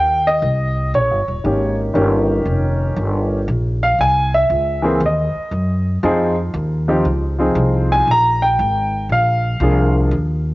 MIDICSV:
0, 0, Header, 1, 4, 480
1, 0, Start_track
1, 0, Tempo, 510204
1, 1836, Time_signature, 4, 2, 24, 8
1, 9918, End_track
2, 0, Start_track
2, 0, Title_t, "Grand piano"
2, 0, Program_c, 0, 0
2, 0, Note_on_c, 0, 79, 94
2, 244, Note_off_c, 0, 79, 0
2, 255, Note_on_c, 0, 75, 86
2, 849, Note_off_c, 0, 75, 0
2, 892, Note_on_c, 0, 73, 75
2, 1354, Note_on_c, 0, 51, 50
2, 1360, Note_on_c, 0, 58, 46
2, 1367, Note_on_c, 0, 61, 38
2, 1373, Note_on_c, 0, 67, 53
2, 1645, Note_off_c, 0, 73, 0
2, 1810, Note_off_c, 0, 51, 0
2, 1812, Note_off_c, 0, 58, 0
2, 1823, Note_off_c, 0, 61, 0
2, 1824, Note_on_c, 0, 51, 66
2, 1827, Note_off_c, 0, 67, 0
2, 1827, Note_on_c, 0, 58, 60
2, 1837, Note_on_c, 0, 61, 63
2, 1841, Note_on_c, 0, 67, 70
2, 3171, Note_off_c, 0, 51, 0
2, 3173, Note_off_c, 0, 58, 0
2, 3178, Note_off_c, 0, 61, 0
2, 3180, Note_off_c, 0, 67, 0
2, 3603, Note_on_c, 0, 77, 89
2, 3754, Note_off_c, 0, 77, 0
2, 3770, Note_on_c, 0, 80, 93
2, 4071, Note_off_c, 0, 80, 0
2, 4087, Note_on_c, 0, 76, 92
2, 4538, Note_on_c, 0, 52, 67
2, 4550, Note_on_c, 0, 58, 61
2, 4556, Note_on_c, 0, 60, 62
2, 4557, Note_on_c, 0, 68, 68
2, 4683, Note_off_c, 0, 76, 0
2, 4690, Note_off_c, 0, 52, 0
2, 4696, Note_off_c, 0, 58, 0
2, 4699, Note_off_c, 0, 60, 0
2, 4700, Note_off_c, 0, 68, 0
2, 4758, Note_on_c, 0, 75, 72
2, 5498, Note_off_c, 0, 75, 0
2, 5675, Note_on_c, 0, 53, 77
2, 5681, Note_on_c, 0, 60, 65
2, 5686, Note_on_c, 0, 63, 69
2, 5692, Note_on_c, 0, 68, 79
2, 5962, Note_off_c, 0, 53, 0
2, 5965, Note_off_c, 0, 60, 0
2, 5967, Note_off_c, 0, 63, 0
2, 5971, Note_off_c, 0, 68, 0
2, 6473, Note_on_c, 0, 53, 60
2, 6475, Note_on_c, 0, 60, 60
2, 6479, Note_on_c, 0, 63, 62
2, 6484, Note_on_c, 0, 67, 70
2, 6619, Note_off_c, 0, 53, 0
2, 6620, Note_off_c, 0, 60, 0
2, 6622, Note_off_c, 0, 63, 0
2, 6624, Note_off_c, 0, 67, 0
2, 6948, Note_on_c, 0, 53, 58
2, 6957, Note_on_c, 0, 60, 59
2, 6959, Note_on_c, 0, 63, 53
2, 6968, Note_on_c, 0, 68, 62
2, 7450, Note_on_c, 0, 80, 90
2, 7561, Note_off_c, 0, 53, 0
2, 7566, Note_off_c, 0, 60, 0
2, 7567, Note_off_c, 0, 63, 0
2, 7571, Note_off_c, 0, 68, 0
2, 7600, Note_off_c, 0, 80, 0
2, 7630, Note_on_c, 0, 82, 92
2, 7923, Note_on_c, 0, 79, 85
2, 7924, Note_off_c, 0, 82, 0
2, 8524, Note_off_c, 0, 79, 0
2, 8583, Note_on_c, 0, 77, 90
2, 9043, Note_on_c, 0, 53, 58
2, 9045, Note_on_c, 0, 58, 47
2, 9053, Note_on_c, 0, 62, 52
2, 9060, Note_on_c, 0, 68, 64
2, 9333, Note_off_c, 0, 77, 0
2, 9522, Note_off_c, 0, 53, 0
2, 9523, Note_off_c, 0, 58, 0
2, 9527, Note_off_c, 0, 62, 0
2, 9530, Note_off_c, 0, 68, 0
2, 9918, End_track
3, 0, Start_track
3, 0, Title_t, "Upright bass"
3, 0, Program_c, 1, 32
3, 0, Note_on_c, 1, 39, 80
3, 380, Note_off_c, 1, 39, 0
3, 396, Note_on_c, 1, 36, 84
3, 862, Note_off_c, 1, 36, 0
3, 884, Note_on_c, 1, 34, 78
3, 1040, Note_off_c, 1, 34, 0
3, 1040, Note_on_c, 1, 31, 51
3, 1198, Note_off_c, 1, 31, 0
3, 1204, Note_on_c, 1, 27, 65
3, 1349, Note_off_c, 1, 27, 0
3, 1361, Note_on_c, 1, 32, 80
3, 1824, Note_off_c, 1, 32, 0
3, 1835, Note_on_c, 1, 31, 81
3, 2300, Note_off_c, 1, 31, 0
3, 2310, Note_on_c, 1, 29, 74
3, 2777, Note_off_c, 1, 29, 0
3, 2788, Note_on_c, 1, 31, 85
3, 3256, Note_off_c, 1, 31, 0
3, 3271, Note_on_c, 1, 34, 85
3, 3738, Note_off_c, 1, 34, 0
3, 3749, Note_on_c, 1, 36, 78
3, 4217, Note_off_c, 1, 36, 0
3, 4231, Note_on_c, 1, 37, 80
3, 4698, Note_off_c, 1, 37, 0
3, 4707, Note_on_c, 1, 39, 90
3, 5007, Note_off_c, 1, 39, 0
3, 5186, Note_on_c, 1, 42, 80
3, 5656, Note_off_c, 1, 42, 0
3, 5673, Note_on_c, 1, 41, 84
3, 6140, Note_off_c, 1, 41, 0
3, 6149, Note_on_c, 1, 39, 87
3, 6618, Note_off_c, 1, 39, 0
3, 6632, Note_on_c, 1, 37, 87
3, 7098, Note_off_c, 1, 37, 0
3, 7104, Note_on_c, 1, 36, 91
3, 7576, Note_off_c, 1, 36, 0
3, 7594, Note_on_c, 1, 34, 78
3, 8062, Note_off_c, 1, 34, 0
3, 8080, Note_on_c, 1, 32, 85
3, 8546, Note_off_c, 1, 32, 0
3, 8555, Note_on_c, 1, 34, 78
3, 9023, Note_off_c, 1, 34, 0
3, 9032, Note_on_c, 1, 36, 93
3, 9502, Note_off_c, 1, 36, 0
3, 9514, Note_on_c, 1, 39, 87
3, 9918, Note_off_c, 1, 39, 0
3, 9918, End_track
4, 0, Start_track
4, 0, Title_t, "Muted upright bass strokes"
4, 5030, Note_on_c, 9, 29, 32
4, 5124, Note_off_c, 9, 29, 0
4, 9918, End_track
0, 0, End_of_file